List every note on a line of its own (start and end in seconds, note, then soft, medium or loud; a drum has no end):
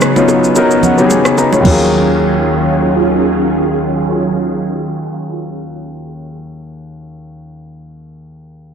0.00 1.63 C#3 medium
0.00 0.16 F#3 medium
0.00 1.61 F#3 medium
0.00 0.16 B3 medium
0.00 1.63 B3 medium
0.00 0.17 C#4 medium
0.00 0.18 D#4 medium
0.00 1.06 G#4 loud
0.00 cross-stick medium
0.00 low bongo soft
0.00 shaker medium
0.16 0.48 F#3 medium
0.16 0.49 B3 medium
0.16 0.49 C#4 medium
0.16 0.49 D#4 medium
0.16 0.50 F4 medium
0.16 low bongo medium
0.16 shaker soft
0.28 high bongo medium
0.28 shaker medium
0.44 shaker soft
0.55 0.89 F#3 medium
0.55 0.89 B3 medium
0.55 0.90 C#4 medium
0.55 0.90 D#4 medium
0.55 0.90 A#4 medium
0.55 0.82 D#5 medium
0.55 high bongo medium
0.55 shaker medium
0.71 shaker medium
0.83 1.09 F#5 medium
0.83 low conga medium
0.83 shaker medium
0.98 1.41 F#3 medium
0.98 1.41 B3 medium
0.98 1.41 C#4 medium
0.98 1.37 D#4 medium
0.98 1.05 G4 medium
0.98 shaker soft
1.06 1.42 G#4 medium
1.06 shaker medium
1.11 1.36 G#5 medium
1.11 low bongo medium
1.25 cross-stick medium
1.25 shaker medium
1.38 1.53 D#4 medium
1.38 1.52 B4 medium
1.38 1.63 A#5 medium
1.38 high bongo medium
1.38 shaker medium
1.53 1.65 F4 medium
1.53 1.65 C#5 medium
1.53 low bongo medium
1.53 shaker medium
1.60 6.34 D#2 medium
1.60 6.36 F#3 medium
1.60 6.38 A#3 medium
1.65 6.39 D#3 medium
1.65 6.39 F#3 medium
1.65 6.39 C#4 medium
1.65 6.40 C#4 medium
1.65 6.39 F4 medium
1.65 6.42 F4 medium
1.65 6.39 G#4 medium
1.65 kick loud
1.65 crash medium
1.65 low conga medium
1.70 6.43 G#4 medium